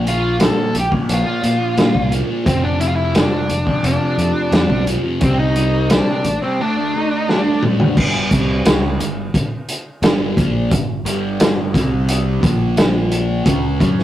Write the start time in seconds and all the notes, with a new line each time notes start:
Already playing: A#1
0.04 A#2 F3 A#3, closed hi-hat
0.08 F4
0.39 A#2 F3 A#3 A4, snare, closed hi-hat
0.74 A#1, muted distorted electric guitar stroke, closed hi-hat
0.80 G4
0.91 F3 A#3, kick
1.09 A#1, closed hi-hat
1.14 F4
1.25 F3 A#3
1.41 A#2 F3 A#3, closed hi-hat
1.75 A#2 F3 A#3, snare, closed hi-hat
1.92 C2 F3 A#3, kick
2.09 A#2 F3 A#3, closed hi-hat
2.27 F3 A#3
2.45 F1 F2 C3 F3 C4, kick, closed hi-hat
2.63 D4
2.79 F2 C3 F3 E4, closed hi-hat
2.88 F4
2.95 E4
3.13 F2 C3 F3 D4, snare, closed hi-hat
3.49 F1, muted distorted electric guitar stroke, closed hi-hat
3.65 C3 F3, kick
3.83 F1 D4, closed hi-hat
3.99 C3 F3
4.16 F2 C3 F3, closed hi-hat
4.51 F2 C3 F3, snare, closed hi-hat
4.69 B1 C3 F3, kick
4.86 F2 C3 F3, closed hi-hat
5.03 C3 F3
5.20 C2 C3 G3 C4, kick, closed hi-hat
5.39 D#4
5.54 C3 G3 C4, closed hi-hat
5.90 C3 G3 C4 D4, snare, closed hi-hat
6.24 A1, muted distorted electric guitar stroke, closed hi-hat
6.42 G3 C4
6.60 D3 A3 D4
6.76 A3 D4
6.93 D3 A3 D4
7.28 D3 A3 D4, snare
7.45 A3 D4
7.62 D3 A3 D4, mid tom
7.80 A3 D4, floor tom
7.97 G1 G2 D3 G3, kick, crash
8.31 C2 C3 G3 C4, kick, closed hi-hat
8.65 C#2 C#3 G#3 C#4, snare, closed hi-hat
8.99 G1 G2 D3, closed hi-hat
9.34 kick, closed hi-hat
9.69 closed hi-hat
10.02 G1 G2 D3 G3, snare, closed hi-hat
10.37 A#1 A#2 F3 A#3, kick, closed hi-hat
10.71 G1 G2 D3, kick, closed hi-hat
11.05 G1 G2 D3 G3, closed hi-hat
11.40 snare, closed hi-hat
11.74 C2 C3 G3 C4, kick, snare, closed hi-hat
12.09 closed hi-hat
12.41 A#1 A#2 F3 A#3, kick, closed hi-hat
12.77 snare, closed hi-hat
13.12 closed hi-hat
13.45 C#2 C#3 G#3 C#4, kick, closed hi-hat
13.80 F#2 F#3 C#4 F#4, kick, closed hi-hat
13.99 snare